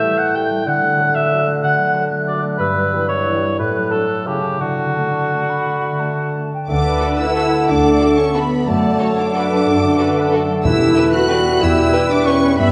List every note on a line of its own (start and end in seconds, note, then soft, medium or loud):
0.00 0.67 A2 medium
0.00 0.67 E3 soft
0.00 0.49 G3 soft
0.00 0.12 G3 soft
0.00 0.61 A3 medium
0.00 0.33 A3 soft
0.00 0.17 E4 soft
0.00 0.13 A4 soft
0.00 0.19 E5 medium
0.00 0.61 G6 medium
0.18 0.67 E4 soft
0.18 0.37 F#5 medium
0.34 0.46 G3 medium
0.34 0.81 A3 soft
0.34 0.46 A4 medium
0.34 0.68 G5 medium
0.50 0.67 G3 soft
0.66 2.56 D3 medium
0.66 1.61 D3 medium
0.66 1.17 F#5 medium
0.66 2.61 F#6 medium
0.82 1.13 A3 soft
0.98 1.10 F#3 soft
0.98 1.30 F#4 soft
0.98 1.10 A4 soft
1.14 1.46 A3 soft
1.14 1.49 E5 medium
1.31 1.42 F#3 medium
1.31 1.93 F#4 soft
1.31 1.42 A4 medium
1.47 2.10 A3 soft
1.63 2.61 D3 medium
1.63 2.04 F#5 medium
1.78 2.60 F#3 soft
1.94 2.07 F#3 soft
1.94 2.27 F#4 soft
1.94 2.07 A4 soft
2.11 2.42 A3 soft
2.28 2.39 F#3 medium
2.28 2.61 F#4 soft
2.28 2.40 A4 medium
2.28 2.43 D5 medium
2.44 2.60 A3 soft
2.58 3.60 G2 medium
2.58 3.61 G2 medium
2.58 3.05 B4 medium
2.58 3.35 E6 soft
2.76 3.42 G3 soft
2.93 3.06 E3 soft
2.93 3.25 B3 soft
2.93 3.05 G4 soft
3.08 3.60 E4 soft
3.08 3.57 C#5 medium
3.26 3.39 E3 soft
3.26 3.60 B3 soft
3.26 3.39 G4 soft
3.43 3.60 G3 soft
3.59 4.27 A2 soft
3.59 4.28 A2 medium
3.59 3.93 B4 medium
3.59 4.28 F#6 soft
3.75 4.28 F#3 soft
3.90 4.03 F#3 soft
3.90 4.03 D4 soft
3.90 4.28 D4 soft
3.90 4.26 A4 medium
4.09 4.43 A4 soft
4.26 4.60 C#3 soft
4.26 4.62 C#3 soft
4.26 4.39 A3 soft
4.26 4.38 E4 soft
4.26 4.62 G4 medium
4.26 4.59 A5 soft
4.43 4.61 E4 soft
4.43 4.94 A4 soft
4.59 5.64 D3 soft
4.59 6.49 D3 soft
4.59 6.53 F#4 medium
4.59 4.91 A5 soft
4.78 5.12 D4 soft
4.94 5.09 A3 soft
4.94 5.09 D4 soft
4.94 5.30 A4 soft
4.94 5.51 A5 medium
5.13 5.47 D4 soft
5.32 5.44 A3 soft
5.32 5.44 D4 soft
5.49 6.16 D4 soft
5.49 6.01 B5 medium
5.65 6.68 D3 soft
5.82 6.84 A3 soft
5.98 6.12 A3 soft
5.98 6.12 D4 soft
5.98 6.34 A4 soft
5.98 6.53 A5 medium
6.17 6.51 D4 soft
6.35 6.48 A3 soft
6.35 6.48 D4 soft
6.35 7.18 A4 soft
6.52 7.83 D4 soft
6.52 6.69 G5 soft
6.68 6.96 D2 medium
6.68 7.67 D3 soft
6.68 8.63 A3 soft
6.68 7.15 D4 medium
6.68 7.16 D4 medium
6.68 8.63 A4 medium
6.68 7.64 B4 medium
6.68 8.44 F#5 medium
6.68 7.16 D6 medium
6.85 7.51 A3 soft
7.01 7.09 F#4 soft
7.01 7.35 F#4 soft
7.01 7.09 A4 soft
7.18 7.68 E4 medium
7.18 8.17 A4 soft
7.18 7.67 E6 medium
7.36 7.44 F#4 soft
7.36 8.00 F#4 soft
7.36 7.44 A4 soft
7.52 8.51 A3 soft
7.68 7.95 D2 medium
7.68 8.68 D3 soft
7.68 8.18 D4 medium
7.68 8.67 A4 soft
7.68 8.17 D6 medium
7.84 10.66 D4 soft
8.00 8.08 F#4 soft
8.00 8.34 F#4 soft
8.00 8.09 A4 soft
8.18 8.35 C#4 medium
8.18 9.17 A4 soft
8.18 8.35 C#6 medium
8.35 8.67 B3 medium
8.35 8.68 B3 medium
8.35 8.43 F#4 soft
8.35 9.00 F#4 soft
8.35 8.43 A4 soft
8.35 8.67 B5 medium
8.52 10.66 A3 soft
8.67 8.95 F#2 medium
8.67 9.65 F#2 medium
8.67 9.18 A3 medium
8.67 11.32 A3 medium
8.67 9.18 A3 medium
8.67 10.61 A4 soft
8.67 9.00 D5 medium
8.67 10.66 F#5 soft
8.67 9.18 A5 medium
8.84 9.51 F#3 soft
9.00 9.08 F#4 soft
9.00 9.34 F#4 soft
9.00 9.08 A4 soft
9.00 9.35 C#5 medium
9.18 10.46 D4 medium
9.18 10.48 D4 medium
9.18 10.16 A4 soft
9.18 10.50 D6 medium
9.34 9.42 F#4 soft
9.34 9.98 F#4 soft
9.34 9.42 A4 soft
9.34 9.66 B4 medium
9.52 10.48 F#3 soft
9.66 10.66 F#2 medium
9.66 9.94 F#2 medium
9.66 9.99 A4 medium
9.83 10.66 D3 soft
9.98 10.06 F#4 soft
9.98 10.32 F#4 soft
9.98 10.06 A4 soft
9.98 10.32 B4 medium
10.17 10.66 A4 soft
10.33 10.41 F#4 medium
10.33 10.66 F#4 soft
10.33 10.41 A4 soft
10.33 10.65 A4 medium
10.49 10.66 F#3 soft
10.64 11.61 E2 medium
10.64 11.10 E2 medium
10.64 10.91 E2 medium
10.64 11.10 E4 medium
10.64 11.11 E4 medium
10.64 10.96 G4 medium
10.64 12.53 B4 medium
10.64 12.57 E5 medium
10.64 11.10 E6 medium
10.79 11.45 B3 soft
10.95 11.03 G4 medium
10.95 11.29 G4 soft
10.95 11.03 B4 soft
10.95 11.30 B4 medium
11.13 11.62 F#4 medium
11.13 12.09 B4 soft
11.13 11.61 F#6 medium
11.29 12.57 G3 medium
11.29 11.37 G4 medium
11.29 11.93 G4 soft
11.29 11.61 A4 medium
11.29 11.37 B4 medium
11.46 12.41 B3 soft
11.61 11.88 E2 medium
11.61 12.58 E2 medium
11.61 12.10 E4 medium
11.61 11.93 G4 medium
11.61 12.10 E6 medium
11.78 12.59 B2 soft
11.92 12.01 G4 medium
11.92 12.25 G4 medium
11.92 12.00 B4 medium
11.92 12.57 B4 medium
12.10 12.26 D4 medium
12.10 12.27 D4 medium
12.10 12.72 B4 soft
12.10 12.26 D6 medium
12.26 12.57 C#4 medium
12.26 12.72 G4 medium
12.26 12.36 G4 medium
12.26 12.35 B4 medium
12.26 12.57 C#6 medium
12.42 12.71 B3 soft
12.57 12.72 G2 medium
12.57 12.72 G3 medium
12.57 12.72 B3 medium
12.57 12.72 B4 medium
12.57 12.72 E5 medium
12.57 12.72 B5 medium